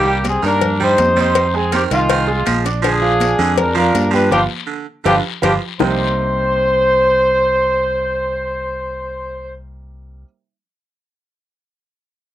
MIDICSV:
0, 0, Header, 1, 6, 480
1, 0, Start_track
1, 0, Key_signature, -3, "minor"
1, 0, Tempo, 370828
1, 1753, Time_signature, 4, 2, 24, 8
1, 15973, End_track
2, 0, Start_track
2, 0, Title_t, "Grand piano"
2, 0, Program_c, 0, 0
2, 67, Note_on_c, 0, 55, 85
2, 71, Note_on_c, 0, 67, 90
2, 75, Note_on_c, 0, 79, 95
2, 463, Note_off_c, 0, 55, 0
2, 465, Note_off_c, 0, 67, 0
2, 468, Note_off_c, 0, 79, 0
2, 551, Note_on_c, 0, 70, 82
2, 552, Note_on_c, 0, 58, 80
2, 557, Note_on_c, 0, 82, 71
2, 946, Note_off_c, 0, 58, 0
2, 946, Note_off_c, 0, 70, 0
2, 949, Note_off_c, 0, 82, 0
2, 1030, Note_on_c, 0, 55, 76
2, 1036, Note_on_c, 0, 67, 75
2, 1041, Note_on_c, 0, 79, 75
2, 1424, Note_off_c, 0, 55, 0
2, 1428, Note_off_c, 0, 67, 0
2, 1431, Note_off_c, 0, 79, 0
2, 1513, Note_on_c, 0, 60, 87
2, 1517, Note_on_c, 0, 72, 77
2, 1523, Note_on_c, 0, 84, 83
2, 1906, Note_off_c, 0, 60, 0
2, 1908, Note_off_c, 0, 72, 0
2, 1912, Note_off_c, 0, 84, 0
2, 1989, Note_on_c, 0, 56, 88
2, 1995, Note_on_c, 0, 68, 89
2, 1996, Note_on_c, 0, 80, 92
2, 2187, Note_off_c, 0, 56, 0
2, 2191, Note_off_c, 0, 68, 0
2, 2191, Note_off_c, 0, 80, 0
2, 2238, Note_on_c, 0, 60, 81
2, 2240, Note_on_c, 0, 72, 70
2, 2244, Note_on_c, 0, 84, 83
2, 2432, Note_off_c, 0, 60, 0
2, 2433, Note_off_c, 0, 72, 0
2, 2435, Note_off_c, 0, 84, 0
2, 2469, Note_on_c, 0, 63, 85
2, 2470, Note_on_c, 0, 51, 92
2, 2474, Note_on_c, 0, 75, 83
2, 2863, Note_off_c, 0, 63, 0
2, 2864, Note_off_c, 0, 51, 0
2, 2866, Note_off_c, 0, 75, 0
2, 2943, Note_on_c, 0, 56, 82
2, 2943, Note_on_c, 0, 68, 86
2, 2949, Note_on_c, 0, 80, 83
2, 3339, Note_off_c, 0, 56, 0
2, 3339, Note_off_c, 0, 68, 0
2, 3343, Note_off_c, 0, 80, 0
2, 3430, Note_on_c, 0, 62, 83
2, 3437, Note_on_c, 0, 74, 84
2, 3441, Note_on_c, 0, 86, 88
2, 3627, Note_off_c, 0, 62, 0
2, 3631, Note_off_c, 0, 74, 0
2, 3633, Note_off_c, 0, 86, 0
2, 3667, Note_on_c, 0, 62, 83
2, 3670, Note_on_c, 0, 50, 77
2, 3676, Note_on_c, 0, 74, 83
2, 3865, Note_off_c, 0, 62, 0
2, 3866, Note_off_c, 0, 50, 0
2, 3870, Note_off_c, 0, 74, 0
2, 3901, Note_on_c, 0, 53, 92
2, 3905, Note_on_c, 0, 65, 86
2, 3916, Note_on_c, 0, 77, 88
2, 4298, Note_off_c, 0, 53, 0
2, 4300, Note_off_c, 0, 65, 0
2, 4306, Note_off_c, 0, 77, 0
2, 4384, Note_on_c, 0, 56, 73
2, 4388, Note_on_c, 0, 68, 76
2, 4393, Note_on_c, 0, 80, 80
2, 4779, Note_off_c, 0, 56, 0
2, 4781, Note_off_c, 0, 68, 0
2, 4784, Note_off_c, 0, 80, 0
2, 4867, Note_on_c, 0, 53, 80
2, 4874, Note_on_c, 0, 65, 84
2, 4877, Note_on_c, 0, 77, 75
2, 5261, Note_off_c, 0, 53, 0
2, 5265, Note_off_c, 0, 65, 0
2, 5267, Note_off_c, 0, 77, 0
2, 5351, Note_on_c, 0, 67, 77
2, 5353, Note_on_c, 0, 55, 89
2, 5356, Note_on_c, 0, 79, 94
2, 5546, Note_off_c, 0, 67, 0
2, 5547, Note_off_c, 0, 55, 0
2, 5549, Note_off_c, 0, 79, 0
2, 5589, Note_on_c, 0, 65, 95
2, 5589, Note_on_c, 0, 71, 96
2, 5590, Note_on_c, 0, 67, 91
2, 5742, Note_off_c, 0, 65, 0
2, 5742, Note_off_c, 0, 67, 0
2, 5742, Note_off_c, 0, 71, 0
2, 6540, Note_on_c, 0, 67, 103
2, 6544, Note_on_c, 0, 71, 111
2, 6546, Note_on_c, 0, 65, 105
2, 6696, Note_off_c, 0, 67, 0
2, 6699, Note_off_c, 0, 65, 0
2, 6699, Note_off_c, 0, 71, 0
2, 7017, Note_on_c, 0, 71, 96
2, 7018, Note_on_c, 0, 65, 100
2, 7018, Note_on_c, 0, 67, 97
2, 7174, Note_off_c, 0, 71, 0
2, 7175, Note_off_c, 0, 65, 0
2, 7175, Note_off_c, 0, 67, 0
2, 7501, Note_on_c, 0, 48, 79
2, 7506, Note_on_c, 0, 55, 80
2, 7506, Note_on_c, 0, 58, 79
2, 7512, Note_on_c, 0, 60, 84
2, 7514, Note_on_c, 0, 63, 81
2, 7517, Note_on_c, 0, 67, 93
2, 13237, Note_off_c, 0, 48, 0
2, 13240, Note_off_c, 0, 55, 0
2, 13240, Note_off_c, 0, 58, 0
2, 13243, Note_off_c, 0, 60, 0
2, 13243, Note_off_c, 0, 63, 0
2, 13245, Note_off_c, 0, 67, 0
2, 15973, End_track
3, 0, Start_track
3, 0, Title_t, "Horn section"
3, 0, Program_c, 1, 61
3, 0, Note_on_c, 1, 58, 92
3, 0, Note_on_c, 1, 67, 117
3, 294, Note_off_c, 1, 58, 0
3, 299, Note_off_c, 1, 67, 0
3, 351, Note_on_c, 1, 60, 81
3, 362, Note_on_c, 1, 68, 108
3, 572, Note_off_c, 1, 60, 0
3, 578, Note_off_c, 1, 68, 0
3, 582, Note_on_c, 1, 62, 89
3, 592, Note_on_c, 1, 70, 116
3, 1015, Note_off_c, 1, 62, 0
3, 1020, Note_off_c, 1, 70, 0
3, 1073, Note_on_c, 1, 63, 84
3, 1074, Note_on_c, 1, 72, 113
3, 1500, Note_off_c, 1, 63, 0
3, 1501, Note_off_c, 1, 72, 0
3, 1545, Note_on_c, 1, 63, 89
3, 1556, Note_on_c, 1, 72, 114
3, 1976, Note_off_c, 1, 63, 0
3, 1982, Note_off_c, 1, 72, 0
3, 2021, Note_on_c, 1, 68, 100
3, 2023, Note_on_c, 1, 60, 79
3, 2244, Note_off_c, 1, 60, 0
3, 2246, Note_off_c, 1, 68, 0
3, 2258, Note_on_c, 1, 67, 91
3, 2260, Note_on_c, 1, 60, 67
3, 2360, Note_off_c, 1, 67, 0
3, 2362, Note_off_c, 1, 60, 0
3, 2500, Note_on_c, 1, 56, 87
3, 2501, Note_on_c, 1, 65, 109
3, 3393, Note_off_c, 1, 56, 0
3, 3393, Note_off_c, 1, 65, 0
3, 3701, Note_on_c, 1, 68, 119
3, 3708, Note_on_c, 1, 62, 89
3, 4592, Note_off_c, 1, 68, 0
3, 4596, Note_off_c, 1, 62, 0
3, 4642, Note_on_c, 1, 70, 102
3, 4653, Note_on_c, 1, 62, 77
3, 4867, Note_off_c, 1, 70, 0
3, 4881, Note_off_c, 1, 62, 0
3, 4883, Note_on_c, 1, 70, 100
3, 4895, Note_on_c, 1, 62, 80
3, 5322, Note_off_c, 1, 70, 0
3, 5328, Note_off_c, 1, 62, 0
3, 5363, Note_on_c, 1, 71, 106
3, 5372, Note_on_c, 1, 62, 67
3, 5563, Note_off_c, 1, 62, 0
3, 5578, Note_off_c, 1, 71, 0
3, 5579, Note_on_c, 1, 62, 115
3, 5582, Note_on_c, 1, 67, 104
3, 5584, Note_on_c, 1, 65, 107
3, 5696, Note_off_c, 1, 62, 0
3, 5698, Note_off_c, 1, 67, 0
3, 5700, Note_off_c, 1, 65, 0
3, 6553, Note_on_c, 1, 67, 111
3, 6554, Note_on_c, 1, 65, 101
3, 6556, Note_on_c, 1, 62, 101
3, 6666, Note_off_c, 1, 67, 0
3, 6667, Note_off_c, 1, 65, 0
3, 6668, Note_off_c, 1, 62, 0
3, 7035, Note_on_c, 1, 62, 90
3, 7040, Note_on_c, 1, 65, 90
3, 7041, Note_on_c, 1, 67, 102
3, 7147, Note_off_c, 1, 62, 0
3, 7151, Note_off_c, 1, 65, 0
3, 7151, Note_off_c, 1, 67, 0
3, 7517, Note_on_c, 1, 72, 110
3, 12339, Note_off_c, 1, 72, 0
3, 15973, End_track
4, 0, Start_track
4, 0, Title_t, "Baritone saxophone"
4, 0, Program_c, 2, 67
4, 0, Note_on_c, 2, 55, 91
4, 236, Note_off_c, 2, 55, 0
4, 549, Note_on_c, 2, 51, 85
4, 802, Note_off_c, 2, 51, 0
4, 1039, Note_on_c, 2, 55, 90
4, 1289, Note_off_c, 2, 55, 0
4, 1504, Note_on_c, 2, 55, 81
4, 1907, Note_off_c, 2, 55, 0
4, 2227, Note_on_c, 2, 51, 91
4, 2480, Note_off_c, 2, 51, 0
4, 2709, Note_on_c, 2, 51, 97
4, 2961, Note_off_c, 2, 51, 0
4, 3181, Note_on_c, 2, 53, 88
4, 3435, Note_off_c, 2, 53, 0
4, 3652, Note_on_c, 2, 53, 96
4, 4058, Note_off_c, 2, 53, 0
4, 4385, Note_on_c, 2, 50, 93
4, 4638, Note_off_c, 2, 50, 0
4, 4850, Note_on_c, 2, 53, 96
4, 5107, Note_off_c, 2, 53, 0
4, 5317, Note_on_c, 2, 53, 90
4, 5728, Note_off_c, 2, 53, 0
4, 6041, Note_on_c, 2, 50, 83
4, 6299, Note_off_c, 2, 50, 0
4, 6529, Note_on_c, 2, 50, 98
4, 6785, Note_off_c, 2, 50, 0
4, 7027, Note_on_c, 2, 53, 95
4, 7279, Note_off_c, 2, 53, 0
4, 7512, Note_on_c, 2, 48, 97
4, 7677, Note_off_c, 2, 48, 0
4, 15973, End_track
5, 0, Start_track
5, 0, Title_t, "Fingered electric bass"
5, 0, Program_c, 3, 33
5, 0, Note_on_c, 3, 36, 100
5, 476, Note_off_c, 3, 36, 0
5, 556, Note_on_c, 3, 43, 100
5, 1224, Note_off_c, 3, 43, 0
5, 1273, Note_on_c, 3, 41, 96
5, 2396, Note_off_c, 3, 41, 0
5, 2470, Note_on_c, 3, 36, 101
5, 3140, Note_off_c, 3, 36, 0
5, 3194, Note_on_c, 3, 34, 97
5, 4315, Note_off_c, 3, 34, 0
5, 4386, Note_on_c, 3, 41, 111
5, 5056, Note_off_c, 3, 41, 0
5, 5108, Note_on_c, 3, 43, 101
5, 5553, Note_off_c, 3, 43, 0
5, 5587, Note_on_c, 3, 31, 95
5, 5765, Note_off_c, 3, 31, 0
5, 6542, Note_on_c, 3, 31, 104
5, 6722, Note_off_c, 3, 31, 0
5, 7034, Note_on_c, 3, 31, 109
5, 7209, Note_off_c, 3, 31, 0
5, 7507, Note_on_c, 3, 36, 73
5, 13240, Note_off_c, 3, 36, 0
5, 15973, End_track
6, 0, Start_track
6, 0, Title_t, "Drums"
6, 86, Note_on_c, 9, 63, 38
6, 216, Note_off_c, 9, 63, 0
6, 311, Note_on_c, 9, 73, 74
6, 318, Note_on_c, 9, 63, 94
6, 323, Note_on_c, 9, 56, 73
6, 440, Note_off_c, 9, 73, 0
6, 448, Note_off_c, 9, 63, 0
6, 452, Note_off_c, 9, 56, 0
6, 559, Note_on_c, 9, 73, 67
6, 566, Note_on_c, 9, 63, 40
6, 688, Note_off_c, 9, 73, 0
6, 696, Note_off_c, 9, 63, 0
6, 795, Note_on_c, 9, 56, 104
6, 799, Note_on_c, 9, 74, 71
6, 802, Note_on_c, 9, 63, 33
6, 802, Note_on_c, 9, 64, 81
6, 925, Note_off_c, 9, 56, 0
6, 928, Note_off_c, 9, 74, 0
6, 931, Note_off_c, 9, 63, 0
6, 931, Note_off_c, 9, 64, 0
6, 1046, Note_on_c, 9, 63, 35
6, 1046, Note_on_c, 9, 64, 74
6, 1175, Note_off_c, 9, 63, 0
6, 1175, Note_off_c, 9, 64, 0
6, 1271, Note_on_c, 9, 56, 80
6, 1283, Note_on_c, 9, 63, 95
6, 1288, Note_on_c, 9, 73, 66
6, 1400, Note_off_c, 9, 56, 0
6, 1412, Note_off_c, 9, 63, 0
6, 1418, Note_off_c, 9, 73, 0
6, 1515, Note_on_c, 9, 63, 98
6, 1517, Note_on_c, 9, 73, 73
6, 1644, Note_off_c, 9, 63, 0
6, 1647, Note_off_c, 9, 73, 0
6, 1750, Note_on_c, 9, 56, 114
6, 1761, Note_on_c, 9, 74, 69
6, 1880, Note_off_c, 9, 56, 0
6, 1890, Note_off_c, 9, 74, 0
6, 2000, Note_on_c, 9, 63, 40
6, 2129, Note_off_c, 9, 63, 0
6, 2230, Note_on_c, 9, 56, 75
6, 2239, Note_on_c, 9, 63, 94
6, 2240, Note_on_c, 9, 73, 80
6, 2360, Note_off_c, 9, 56, 0
6, 2369, Note_off_c, 9, 63, 0
6, 2369, Note_off_c, 9, 73, 0
6, 2476, Note_on_c, 9, 56, 79
6, 2483, Note_on_c, 9, 73, 73
6, 2605, Note_off_c, 9, 56, 0
6, 2612, Note_off_c, 9, 73, 0
6, 2712, Note_on_c, 9, 56, 119
6, 2714, Note_on_c, 9, 74, 80
6, 2720, Note_on_c, 9, 63, 38
6, 2842, Note_off_c, 9, 56, 0
6, 2843, Note_off_c, 9, 74, 0
6, 2850, Note_off_c, 9, 63, 0
6, 2953, Note_on_c, 9, 63, 38
6, 3082, Note_off_c, 9, 63, 0
6, 3192, Note_on_c, 9, 56, 89
6, 3192, Note_on_c, 9, 63, 100
6, 3201, Note_on_c, 9, 73, 79
6, 3321, Note_off_c, 9, 56, 0
6, 3322, Note_off_c, 9, 63, 0
6, 3331, Note_off_c, 9, 73, 0
6, 3434, Note_on_c, 9, 63, 34
6, 3434, Note_on_c, 9, 73, 77
6, 3441, Note_on_c, 9, 56, 75
6, 3563, Note_off_c, 9, 73, 0
6, 3564, Note_off_c, 9, 63, 0
6, 3571, Note_off_c, 9, 56, 0
6, 3668, Note_on_c, 9, 63, 35
6, 3677, Note_on_c, 9, 74, 75
6, 3680, Note_on_c, 9, 56, 111
6, 3797, Note_off_c, 9, 63, 0
6, 3807, Note_off_c, 9, 74, 0
6, 3809, Note_off_c, 9, 56, 0
6, 3910, Note_on_c, 9, 63, 41
6, 4040, Note_off_c, 9, 63, 0
6, 4147, Note_on_c, 9, 63, 97
6, 4157, Note_on_c, 9, 56, 79
6, 4159, Note_on_c, 9, 73, 80
6, 4276, Note_off_c, 9, 63, 0
6, 4287, Note_off_c, 9, 56, 0
6, 4288, Note_off_c, 9, 73, 0
6, 4389, Note_on_c, 9, 63, 45
6, 4393, Note_on_c, 9, 73, 78
6, 4518, Note_off_c, 9, 63, 0
6, 4523, Note_off_c, 9, 73, 0
6, 4629, Note_on_c, 9, 56, 109
6, 4631, Note_on_c, 9, 63, 37
6, 4631, Note_on_c, 9, 64, 91
6, 4636, Note_on_c, 9, 74, 81
6, 4759, Note_off_c, 9, 56, 0
6, 4760, Note_off_c, 9, 63, 0
6, 4760, Note_off_c, 9, 64, 0
6, 4765, Note_off_c, 9, 74, 0
6, 4872, Note_on_c, 9, 63, 36
6, 4872, Note_on_c, 9, 64, 73
6, 5002, Note_off_c, 9, 63, 0
6, 5002, Note_off_c, 9, 64, 0
6, 5112, Note_on_c, 9, 63, 98
6, 5113, Note_on_c, 9, 56, 75
6, 5116, Note_on_c, 9, 73, 73
6, 5241, Note_off_c, 9, 63, 0
6, 5242, Note_off_c, 9, 56, 0
6, 5245, Note_off_c, 9, 73, 0
6, 5344, Note_on_c, 9, 63, 91
6, 5359, Note_on_c, 9, 73, 73
6, 5474, Note_off_c, 9, 63, 0
6, 5488, Note_off_c, 9, 73, 0
6, 5582, Note_on_c, 9, 64, 95
6, 5588, Note_on_c, 9, 74, 99
6, 5595, Note_on_c, 9, 56, 104
6, 5711, Note_off_c, 9, 64, 0
6, 5717, Note_off_c, 9, 74, 0
6, 5724, Note_off_c, 9, 56, 0
6, 6541, Note_on_c, 9, 74, 107
6, 6545, Note_on_c, 9, 64, 96
6, 6549, Note_on_c, 9, 56, 106
6, 6670, Note_off_c, 9, 74, 0
6, 6674, Note_off_c, 9, 64, 0
6, 6679, Note_off_c, 9, 56, 0
6, 7019, Note_on_c, 9, 64, 105
6, 7028, Note_on_c, 9, 74, 101
6, 7033, Note_on_c, 9, 56, 116
6, 7148, Note_off_c, 9, 64, 0
6, 7157, Note_off_c, 9, 74, 0
6, 7162, Note_off_c, 9, 56, 0
6, 7499, Note_on_c, 9, 74, 104
6, 7502, Note_on_c, 9, 64, 101
6, 7511, Note_on_c, 9, 61, 95
6, 7628, Note_off_c, 9, 74, 0
6, 7631, Note_off_c, 9, 64, 0
6, 7640, Note_off_c, 9, 61, 0
6, 15973, End_track
0, 0, End_of_file